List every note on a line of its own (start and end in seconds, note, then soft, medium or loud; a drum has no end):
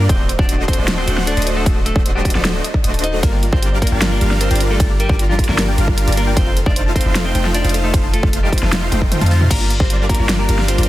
0.09 0.37 D1 medium
0.09 0.19 A3 medium
0.09 0.31 C4 medium
0.09 0.19 D4 medium
0.09 0.19 F#4 medium
0.09 0.13 A4 medium
0.09 0.19 C5 medium
0.09 0.31 C5 medium
0.09 0.19 D#5 medium
0.09 kick loud
0.09 closed hi-hat medium
0.19 0.23 D5 medium
0.29 0.33 C5 loud
0.29 closed hi-hat medium
0.39 0.76 D1 medium
0.39 0.76 A3 loud
0.39 0.60 D4 medium
0.39 0.76 D4 medium
0.39 0.76 F#4 loud
0.39 0.76 C5 loud
0.39 0.60 D5 medium
0.39 0.76 D#5 loud
0.39 0.45 F#5 loud
0.39 kick loud
0.49 0.53 F#4 medium
0.49 closed hi-hat medium
0.59 0.64 F#4 loud
0.68 0.90 C4 medium
0.68 0.72 A4 medium
0.68 0.90 C5 medium
0.68 kick medium
0.68 closed hi-hat medium
0.73 closed hi-hat medium
0.78 1.06 D1 loud
0.78 1.05 A3 medium
0.78 1.05 D4 medium
0.78 1.05 F#4 medium
0.78 1.05 C5 medium
0.78 0.82 D5 medium
0.78 1.05 D#5 medium
0.88 0.92 C5 loud
0.88 snare loud
0.88 closed hi-hat medium
0.98 1.19 C4 medium
0.98 1.19 C5 medium
0.98 1.04 F#5 loud
1.07 1.35 D1 medium
1.07 1.35 A3 medium
1.07 1.35 D4 medium
1.07 1.35 F#4 medium
1.07 1.11 F#4 medium
1.07 1.35 C5 medium
1.07 1.35 F#5 loud
1.07 closed hi-hat medium
1.17 1.23 F#4 loud
1.17 snare soft
1.27 1.49 D4 medium
1.27 1.31 A4 medium
1.27 1.49 D5 medium
1.27 closed hi-hat medium
1.37 1.64 D1 loud
1.37 1.64 A3 medium
1.37 1.64 D4 medium
1.37 1.64 F#4 medium
1.37 1.64 C5 medium
1.37 1.41 D5 medium
1.37 1.64 D#5 loud
1.37 closed hi-hat medium
1.42 closed hi-hat medium
1.47 1.51 C5 loud
1.47 closed hi-hat medium
1.56 1.78 A3 medium
1.56 1.78 A4 medium
1.56 1.62 F#5 loud
1.66 1.94 D1 loud
1.66 1.76 A3 medium
1.66 1.76 D4 medium
1.66 1.70 F#4 medium
1.66 1.76 F#4 medium
1.66 1.76 C5 medium
1.66 1.76 D#5 medium
1.66 kick loud
1.66 closed hi-hat medium
1.76 1.82 F#4 loud
1.86 2.07 A3 medium
1.86 1.90 A4 medium
1.86 2.07 A4 medium
1.86 closed hi-hat medium
1.96 2.33 A3 loud
1.96 2.33 D4 medium
1.96 2.33 F#4 medium
1.96 2.33 C5 medium
1.96 2.00 D5 medium
1.96 2.33 D#5 loud
1.96 kick loud
2.05 2.09 C5 loud
2.05 closed hi-hat medium
2.15 2.30 G3 medium
2.15 2.30 G4 medium
2.15 2.21 F#5 loud
2.25 2.29 F#4 medium
2.25 kick medium
2.25 closed hi-hat soft
2.30 closed hi-hat medium
2.35 2.60 D1 loud
2.35 2.56 A3 medium
2.35 2.62 A3 medium
2.35 2.62 D4 medium
2.35 2.62 F#4 medium
2.35 2.41 F#4 loud
2.35 2.57 A4 medium
2.35 2.62 C5 medium
2.35 2.62 D#5 medium
2.35 snare soft
2.45 2.49 A4 medium
2.45 snare loud
2.45 closed hi-hat medium
2.55 2.59 D5 medium
2.64 2.70 D#5 loud
2.64 closed hi-hat medium
2.74 2.80 D5 medium
2.74 kick medium
2.84 3.21 D1 loud
2.84 3.21 A3 medium
2.84 3.21 D4 medium
2.84 3.21 F#4 medium
2.84 3.21 C5 medium
2.84 2.86 D#5 medium
2.84 3.21 D#5 medium
2.84 closed hi-hat medium
2.94 2.96 A5 medium
2.94 closed hi-hat soft
2.99 closed hi-hat medium
3.04 3.18 D#4 medium
3.04 3.07 C5 medium
3.04 3.18 D#5 medium
3.04 closed hi-hat medium
3.14 3.16 A4 loud
3.23 3.51 G1 medium
3.23 3.33 G3 medium
3.23 3.45 A#3 medium
3.23 3.33 D4 medium
3.23 3.33 F4 medium
3.23 3.33 A#4 medium
3.23 3.27 A#4 loud
3.23 3.45 A#4 medium
3.23 3.33 D5 loud
3.23 kick loud
3.23 closed hi-hat medium
3.23 ride soft
3.33 3.39 G5 loud
3.43 3.47 F4 medium
3.43 closed hi-hat medium
3.53 3.90 G3 loud
3.53 3.74 C4 medium
3.53 3.90 D4 medium
3.53 3.58 F4 loud
3.53 3.90 F4 medium
3.53 3.90 A#4 loud
3.53 3.74 C5 medium
3.53 3.90 D5 loud
3.53 kick loud
3.62 3.66 G4 medium
3.62 closed hi-hat medium
3.72 3.76 D5 medium
3.82 4.04 A#3 medium
3.82 3.86 A#4 loud
3.82 4.03 A#4 medium
3.82 kick medium
3.82 closed hi-hat soft
3.87 closed hi-hat medium
3.92 4.19 G1 loud
3.92 4.19 G3 medium
3.92 4.19 D4 medium
3.92 4.19 F4 medium
3.92 4.19 A#4 medium
3.92 4.19 D5 medium
3.92 3.98 G5 loud
4.02 4.06 F4 medium
4.02 snare loud
4.02 closed hi-hat medium
4.02 ride soft
4.12 4.33 A#3 medium
4.12 4.17 F4 loud
4.12 4.33 A#4 medium
4.21 4.49 G1 loud
4.21 4.49 G3 medium
4.21 4.48 D4 medium
4.21 4.49 F4 medium
4.21 4.25 G4 medium
4.21 4.49 A#4 medium
4.21 4.49 F5 loud
4.21 closed hi-hat medium
4.31 4.35 D5 medium
4.31 snare soft
4.41 4.62 C4 medium
4.41 4.45 A#4 loud
4.41 4.62 C5 medium
4.41 closed hi-hat medium
4.51 4.78 G1 loud
4.51 4.78 G3 medium
4.51 4.78 D4 medium
4.51 4.78 F4 medium
4.51 4.78 A#4 medium
4.51 4.78 D5 loud
4.51 4.57 G5 loud
4.51 closed hi-hat soft
4.55 closed hi-hat medium
4.60 4.64 F4 medium
4.60 closed hi-hat medium
4.70 4.92 A3 medium
4.70 4.76 F4 loud
4.70 4.92 A4 medium
4.80 5.08 G1 medium
4.80 4.90 G3 medium
4.80 4.90 D4 medium
4.80 4.90 F4 medium
4.80 4.84 G4 medium
4.80 4.90 A#4 medium
4.80 4.90 D5 loud
4.80 kick loud
4.80 closed hi-hat medium
4.80 ride soft
4.90 4.94 D5 medium
5.00 5.21 G3 medium
5.00 5.21 G4 medium
5.00 5.04 A#4 loud
5.00 closed hi-hat medium
5.09 5.47 G1 medium
5.09 5.46 G3 loud
5.09 5.46 D4 medium
5.09 5.46 F4 medium
5.09 5.46 A#4 medium
5.09 5.46 D5 loud
5.09 5.15 G5 loud
5.09 kick loud
5.19 5.23 F4 medium
5.19 closed hi-hat medium
5.29 5.44 F3 medium
5.29 5.35 F4 medium
5.29 5.43 F4 medium
5.39 5.43 G4 medium
5.39 kick medium
5.39 closed hi-hat soft
5.44 closed hi-hat medium
5.49 5.76 G1 loud
5.49 5.76 G3 medium
5.49 5.70 A#3 medium
5.49 5.76 D4 medium
5.49 5.76 F4 medium
5.49 5.76 A#4 medium
5.49 5.70 A#4 medium
5.49 5.76 D5 medium
5.49 5.53 D5 medium
5.49 snare soft
5.58 5.62 A#4 loud
5.58 snare loud
5.58 closed hi-hat medium
5.58 ride soft
5.68 5.74 G5 loud
5.78 6.05 G1 loud
5.78 6.05 G3 loud
5.78 6.05 D4 medium
5.78 5.82 F4 medium
5.78 6.05 F4 medium
5.78 6.05 A#4 medium
5.78 6.05 F5 loud
5.78 closed hi-hat medium
5.88 5.94 F4 loud
5.88 kick medium
5.98 6.02 G4 medium
5.98 closed hi-hat medium
6.07 6.35 G1 loud
6.07 6.35 G3 medium
6.07 6.35 D4 medium
6.07 6.35 F4 medium
6.07 6.35 A#4 medium
6.07 6.11 D5 medium
6.07 6.35 D5 loud
6.07 closed hi-hat soft
6.12 closed hi-hat medium
6.17 6.32 A#3 medium
6.17 6.21 A#4 loud
6.17 6.32 A#4 medium
6.17 closed hi-hat medium
6.27 6.33 G5 loud
6.37 6.47 A3 medium
6.37 6.58 C4 medium
6.37 6.47 D#4 medium
6.37 6.41 F4 medium
6.37 6.47 F4 medium
6.37 6.47 C5 medium
6.37 6.58 C5 medium
6.37 6.47 F5 loud
6.37 kick loud
6.37 closed hi-hat medium
6.37 ride soft
6.47 6.53 F4 loud
6.57 6.60 A4 medium
6.57 closed hi-hat medium
6.66 7.04 F1 medium
6.66 7.03 A3 loud
6.66 6.88 D4 medium
6.66 7.03 D#4 medium
6.66 7.03 F4 medium
6.66 7.03 C5 medium
6.66 6.88 D5 medium
6.66 6.70 D#5 medium
6.66 7.03 F5 loud
6.66 kick loud
6.76 6.80 C5 loud
6.76 closed hi-hat medium
6.86 6.92 A5 loud
6.96 7.17 C4 medium
6.96 7.00 F4 medium
6.96 7.17 C5 medium
6.96 kick medium
6.96 closed hi-hat soft
7.01 closed hi-hat medium
7.05 7.33 F1 loud
7.05 7.33 A3 medium
7.05 7.33 D#4 medium
7.05 7.33 F4 medium
7.05 7.12 F4 loud
7.05 7.33 C5 medium
7.05 7.33 F5 medium
7.15 7.19 A4 medium
7.15 snare loud
7.15 closed hi-hat medium
7.15 ride soft
7.25 7.47 C4 medium
7.25 7.47 C5 medium
7.25 7.29 D#5 medium
7.35 7.62 F1 loud
7.35 7.62 A3 loud
7.35 7.62 D#4 medium
7.35 7.62 F4 medium
7.35 7.62 C5 medium
7.35 7.39 C5 loud
7.35 7.62 G5 loud
7.35 closed hi-hat medium
7.45 7.51 A5 loud
7.45 snare soft
7.54 7.76 D4 medium
7.54 7.59 F4 medium
7.54 7.76 D5 medium
7.54 closed hi-hat medium
7.64 7.92 F1 loud
7.64 7.92 A3 medium
7.64 7.92 D#4 medium
7.64 7.91 F4 medium
7.64 7.70 F4 loud
7.64 7.92 C5 medium
7.64 7.91 F5 loud
7.64 closed hi-hat soft
7.69 closed hi-hat medium
7.74 7.78 A4 medium
7.74 closed hi-hat medium
7.84 8.05 A3 medium
7.84 8.05 A4 medium
7.84 7.88 D#5 medium
7.94 8.21 F1 medium
7.94 8.04 A3 medium
7.94 8.04 D#4 medium
7.94 8.04 F4 medium
7.94 7.98 C5 loud
7.94 8.04 C5 medium
7.94 8.04 F5 loud
7.94 kick loud
7.94 closed hi-hat medium
7.94 ride soft
8.04 8.09 A5 loud
8.13 8.35 A3 medium
8.13 8.17 F4 medium
8.13 8.35 A4 medium
8.13 closed hi-hat medium
8.23 8.60 F1 loud
8.23 8.60 A3 loud
8.23 8.60 D#4 medium
8.23 8.29 F4 loud
8.23 8.60 F4 loud
8.23 8.60 C5 medium
8.23 8.60 F5 loud
8.23 kick loud
8.33 8.37 A4 medium
8.33 closed hi-hat medium
8.43 8.57 G3 medium
8.43 8.57 G4 medium
8.43 8.47 D#5 medium
8.52 8.57 C5 loud
8.52 kick medium
8.52 closed hi-hat medium
8.58 closed hi-hat medium
8.62 8.90 F1 loud
8.62 8.84 F3 medium
8.62 8.89 A3 medium
8.62 8.89 D#4 medium
8.62 8.89 F4 medium
8.62 8.84 F4 medium
8.62 8.89 C5 medium
8.62 8.89 F5 medium
8.62 8.68 A5 loud
8.62 snare soft
8.72 8.76 F4 medium
8.72 snare loud
8.72 closed hi-hat medium
8.72 ride soft
8.82 8.88 F4 loud
8.92 9.19 F1 loud
8.92 9.19 A3 loud
8.92 9.19 D#4 medium
8.92 9.19 F4 medium
8.92 8.96 A4 medium
8.92 9.19 C5 medium
8.92 9.19 G5 loud
8.92 closed hi-hat medium
8.92 high tom medium
9.02 9.06 D#5 medium
9.02 kick medium
9.12 9.15 C5 loud
9.12 closed hi-hat medium
9.12 mid tom medium
9.21 9.49 F2 loud
9.21 9.48 A3 medium
9.21 9.48 D#4 medium
9.21 9.48 F4 medium
9.21 9.48 C5 medium
9.21 9.48 F5 loud
9.21 9.27 A5 loud
9.21 closed hi-hat medium
9.21 mid tom medium
9.26 closed hi-hat medium
9.31 9.45 F3 medium
9.31 9.35 F4 medium
9.31 9.45 F4 medium
9.31 open hi-hat medium
9.41 9.47 F4 loud
9.41 mid tom medium
9.51 9.78 G1 medium
9.51 9.61 G3 medium
9.51 9.72 A#3 medium
9.51 9.61 D4 medium
9.51 9.53 F4 loud
9.51 9.61 F4 medium
9.51 9.61 A#4 medium
9.51 9.72 A#4 loud
9.51 9.61 D5 medium
9.51 kick loud
9.51 closed hi-hat medium
9.51 crash loud
9.51 ride soft
9.61 9.64 F4 loud
9.70 9.76 F4 medium
9.70 closed hi-hat medium
9.80 10.17 G1 loud
9.80 10.17 G3 loud
9.80 10.02 C4 medium
9.80 10.17 D4 loud
9.80 10.17 F4 medium
9.80 9.84 G4 loud
9.80 10.17 A#4 medium
9.80 10.02 C5 medium
9.80 10.17 D5 loud
9.80 kick loud
9.90 9.94 F4 medium
9.90 closed hi-hat medium
10.00 10.06 D5 medium
10.09 10.31 A#3 medium
10.09 10.12 F4 loud
10.09 10.31 A#4 medium
10.09 kick medium
10.09 closed hi-hat medium
10.15 closed hi-hat medium
10.19 10.47 G1 loud
10.19 10.46 G3 medium
10.19 10.46 D4 medium
10.19 10.23 F4 loud
10.19 10.46 F4 medium
10.19 10.46 A#4 medium
10.19 10.46 D5 medium
10.29 10.35 F4 medium
10.29 snare loud
10.29 closed hi-hat medium
10.29 ride soft
10.39 10.60 A#3 medium
10.39 10.43 G4 loud
10.39 10.60 A#4 medium
10.49 10.76 G1 loud
10.49 10.76 G3 loud
10.49 10.76 D4 medium
10.49 10.76 F4 medium
10.49 10.53 F4 medium
10.49 10.76 A#4 medium
10.49 10.76 F5 loud
10.49 closed hi-hat medium
10.59 10.64 D5 medium
10.59 snare soft
10.68 10.89 C4 medium
10.68 10.71 F4 loud
10.68 10.89 C5 medium
10.68 closed hi-hat medium
10.78 10.89 G1 loud
10.78 10.89 G3 medium
10.78 10.89 D4 medium
10.78 10.82 F4 loud
10.78 10.89 F4 medium
10.78 10.89 A#4 medium
10.78 10.89 D5 loud
10.78 closed hi-hat medium
10.83 closed hi-hat medium